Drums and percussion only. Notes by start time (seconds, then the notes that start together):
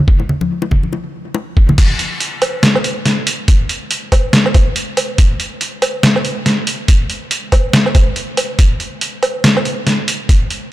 0.08 kick
0.20 high bongo
0.29 low conga
0.41 high conga
0.62 high bongo
0.71 kick, low conga
0.83 high conga
0.93 high bongo
1.35 high bongo
1.57 kick
1.69 high bongo, high conga, low conga
1.78 kick, closed hi-hat, crash
1.99 closed hi-hat
2.20 closed hi-hat
2.42 closed hi-hat, low woodblock
2.63 snare, closed hi-hat
2.75 low woodblock
2.84 closed hi-hat
3.06 snare, closed hi-hat
3.27 closed hi-hat
3.48 kick, closed hi-hat
3.69 closed hi-hat
3.91 closed hi-hat
4.12 kick, closed hi-hat, low woodblock
4.33 snare, closed hi-hat
4.46 low woodblock
4.54 kick, closed hi-hat, low woodblock
4.76 closed hi-hat
4.97 closed hi-hat, low woodblock
5.18 kick, closed hi-hat
5.40 closed hi-hat
5.61 closed hi-hat
5.82 closed hi-hat, low woodblock
6.03 snare, closed hi-hat
6.16 low woodblock
6.25 closed hi-hat
6.46 snare, closed hi-hat
6.67 closed hi-hat
6.88 kick, closed hi-hat
7.10 closed hi-hat
7.31 closed hi-hat
7.52 kick, closed hi-hat, low woodblock
7.73 snare, closed hi-hat
7.86 low woodblock
7.95 kick, closed hi-hat, low woodblock
8.16 closed hi-hat
8.37 closed hi-hat, low woodblock
8.59 kick, closed hi-hat
8.80 closed hi-hat
9.01 closed hi-hat
9.23 closed hi-hat, low woodblock
9.44 snare, closed hi-hat
9.57 low woodblock
9.65 closed hi-hat
9.87 snare, closed hi-hat
10.08 closed hi-hat
10.29 kick, closed hi-hat
10.50 closed hi-hat